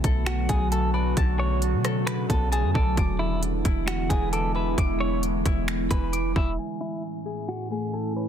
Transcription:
Already playing: D3 F#3 A3 B3 F#4 C#5 A5
0.04 B1 A4, kick, closed hi-hat
0.26 F#4, finger snap, closed hi-hat
0.49 B1 B3 G#4, kick, closed hi-hat
0.72 A4 A5, closed hi-hat
0.94 B4 D5
1.17 B1 C#3 A5, kick, closed hi-hat
1.39 C#5
1.62 closed hi-hat
1.73 B2
1.84 A4, cross-stick, closed hi-hat
2.07 B4, finger snap, closed hi-hat
2.30 B1 B3 A4, kick, closed hi-hat
2.52 G#4 A5, closed hi-hat
2.64 F#2
2.74 B1 A4 D5, kick
2.97 E1 E3 G#3 B3 E4 D6, kick, closed hi-hat
3.19 E4
3.43 closed hi-hat
3.65 E1 E4, kick, closed hi-hat
3.88 F#4, finger snap, closed hi-hat
4.09 E1 E3 G#4, kick, closed hi-hat
4.33 A4 D6, closed hi-hat
4.55 B4 E5
4.78 E1 D6, kick, closed hi-hat
5.00 C#5
5.23 closed hi-hat
5.45 E1 E4, kick, closed hi-hat
5.68 finger snap, closed hi-hat
5.91 E1 E3 B4, kick, closed hi-hat
6.13 D6, closed hi-hat
6.36 E1 E4 E5, kick
6.58 A2 E3 A3 C#4 E4 G#5
6.81 E4
7.25 G#4
7.48 F#4
7.70 A3 G#4
7.93 A4 G#5
8.16 B4 C#5

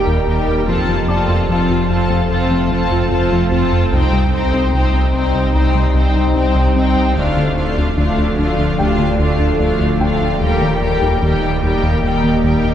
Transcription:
Already playing: D#1 D#2 G3 A#3 D#4 G4 A#4 G5 A5 A6
0.07 D#2 D#3
0.27 D#2 G3 D#4 G4 A#4 G5
0.47 D#2
0.67 F1 F2 F3 A3 C4 F4 A4 C5 A5
0.88 F3 C4
1.08 F2 C4 F4 A4 D5 A5 D6
1.29 F2 F4
1.48 F2 F3 C4 F4 A4 A5
1.69 F2 F4
1.89 F2 C4 F4 A4 A5
2.10 F2 F3
2.30 F2 C4 F4 A4 A5
2.50 F3 C4
2.70 F2 F3 C4 F4 A4 A5
2.91 F2 F4
3.11 F2 C4 F4 A4 A5
3.32 F2 F3
3.52 F2 C4 F4 A4 A5
3.72 F2
3.92 C2 C3 G3 C4 D#4 C5 G5
4.13 C3 G3
4.33 C2 C4 D#4 C5 G5
4.53 C2 C4
4.73 C2 C3 C4 D#4 C5 G5
4.94 C2 C4
5.14 C2 C4 D#4 C5 G5
5.34 C2 C3
5.54 C2 C4 D#4 C5 G5 A#5
5.75 C3 G3
5.94 C2 C3 C4 D#4 C5 G5
6.15 C2 C4
6.35 C2 C4 D#4 C5 G5
6.55 C2 C3
6.76 C2 C4 D#4 C5 G5
6.96 C2
7.16 D1 D2 D3 F3 A3 D4 F4 D5 F5
7.37 D3 A3
7.57 D2 A3 D4 F4 F5
7.78 D2 D4
7.97 D2 D3 A3 D4 F4 F5
8.18 D2 D4
8.37 D2 A3 D4 F4 F5
8.59 D2 D3
8.78 D2 A3 D4 F4 G4 F5 G5
8.99 D3 A3
9.19 D2 D3 A3 D4 F4 F5
9.40 D2 D4
9.59 D2 A3 D4 F4 F5
9.80 D2 D3
10.00 D2 A3 D4 F4 F5 G5
10.20 D2
10.41 D#1 D#2 D#3 G3 A#3 D#4 G4 A#4 D#5 G5
10.61 D#3 A#3
10.81 D#2 G3 G4 A#4 G5
11.02 D#2 D#4
11.22 D#2 D#3 G3 G4 A#4 G5
11.42 D#2 D#4
11.63 D#2 G3 D#4 G4 A#4 G5
11.83 D#2 D#3
12.03 D#2 G3 G4 A#4 G5
12.24 D#3 A#3
12.44 D#2 D#3 G3 G4 A#4 G5
12.64 D#2 D#4

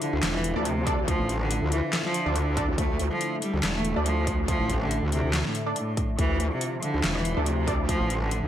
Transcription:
Already playing: D3 F3 E4
0.02 D3, closed hi-hat
0.13 D2
0.23 E1, snare, clap, closed hi-hat
0.34 E3
0.44 closed hi-hat
0.56 D2 D4 A4 D5
0.65 C3, closed hi-hat
0.87 D4 A4 D5, kick, closed hi-hat
1.08 F3, kick, closed hi-hat
1.20 A1
1.29 closed hi-hat
1.41 D3
1.51 closed hi-hat
1.62 D2
1.72 E3, closed hi-hat
1.93 snare, clap, closed hi-hat
2.05 F3, snare
2.14 closed hi-hat
2.26 D2 D4 A4 D5
2.35 D3, closed hi-hat
2.57 D4 A4 D5, kick, closed hi-hat
2.68 D2
2.78 D2 A3, kick, closed hi-hat
2.99 D2, closed hi-hat
3.11 F3
3.21 closed hi-hat
3.42 G3, closed hi-hat
3.54 D2
3.63 E1, snare, clap, closed hi-hat
3.75 A3
3.85 closed hi-hat
3.96 D2 D4 A4 D5
4.06 F3, closed hi-hat
4.27 kick, closed hi-hat
4.48 F3, kick, closed hi-hat
4.60 A1
4.70 kick, closed hi-hat
4.81 D3
4.91 closed hi-hat
5.03 D2
5.12 C3, closed hi-hat
5.24 D2
5.33 snare, clap, closed hi-hat
5.45 A2, snare
5.55 closed hi-hat
5.66 D4 A4 D5
5.76 A2, closed hi-hat
5.97 kick, closed hi-hat
6.19 D2 E3 F3, kick, closed hi-hat
6.40 D2, closed hi-hat
6.52 C3
6.61 closed hi-hat
6.82 D3, closed hi-hat
6.94 D2
7.04 E1, snare, clap, closed hi-hat
7.15 E3
7.25 closed hi-hat
7.37 D2 D4 A4 D5
7.46 C3, closed hi-hat
7.68 D4 A4 D5, kick, closed hi-hat
7.89 F3, kick, closed hi-hat
8.01 A1
8.10 closed hi-hat
8.22 D3
8.31 closed hi-hat
8.43 D2

